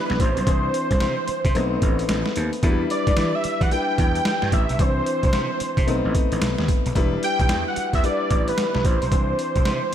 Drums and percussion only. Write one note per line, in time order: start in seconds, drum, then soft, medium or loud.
0.10 snare medium
0.20 kick medium
0.20 closed hi-hat medium
0.37 closed hi-hat medium
0.47 kick loud
0.47 closed hi-hat medium
0.74 closed hi-hat medium
0.91 kick loud
0.91 closed hi-hat medium
1.00 snare loud
1.00 closed hi-hat medium
1.28 closed hi-hat medium
1.45 kick medium
1.45 closed hi-hat medium
1.55 closed hi-hat medium
1.82 kick medium
1.82 closed hi-hat medium
1.99 closed hi-hat soft
2.09 snare loud
2.09 closed hi-hat medium
2.26 snare medium
2.36 closed hi-hat medium
2.53 closed hi-hat soft
2.63 kick loud
2.63 closed hi-hat medium
2.90 closed hi-hat medium
3.07 kick loud
3.07 closed hi-hat medium
3.17 snare loud
3.17 closed hi-hat medium
3.44 closed hi-hat medium
3.61 kick medium
3.61 closed hi-hat medium
3.71 closed hi-hat medium
3.98 kick medium
3.98 closed hi-hat medium
4.15 closed hi-hat medium
4.25 snare loud
4.25 closed hi-hat medium
4.42 snare medium
4.52 kick medium
4.52 closed hi-hat medium
4.69 closed hi-hat soft
4.79 kick loud
4.79 closed hi-hat medium
5.06 closed hi-hat medium
5.23 kick medium
5.23 closed hi-hat soft
5.33 snare loud
5.33 closed hi-hat medium
5.60 closed hi-hat medium
5.77 kick medium
5.77 closed hi-hat medium
5.88 closed hi-hat medium
6.15 kick medium
6.15 closed hi-hat medium
6.32 closed hi-hat medium
6.42 snare loud
6.42 closed hi-hat medium
6.58 snare medium
6.68 kick medium
6.68 closed hi-hat medium
6.86 closed hi-hat medium
6.95 kick loud
6.95 closed hi-hat medium
7.23 closed hi-hat medium
7.39 kick medium
7.39 closed hi-hat soft
7.49 snare loud
7.49 closed hi-hat medium
7.76 closed hi-hat medium
7.93 kick medium
7.93 closed hi-hat medium
8.04 closed hi-hat medium
8.30 kick medium
8.30 closed hi-hat medium
8.48 closed hi-hat medium
8.58 snare loud
8.58 closed hi-hat medium
8.75 snare medium
8.85 kick loud
8.85 closed hi-hat medium
9.02 closed hi-hat soft
9.12 kick loud
9.12 closed hi-hat medium
9.39 closed hi-hat medium
9.56 kick medium
9.56 closed hi-hat soft
9.65 snare loud
9.65 closed hi-hat medium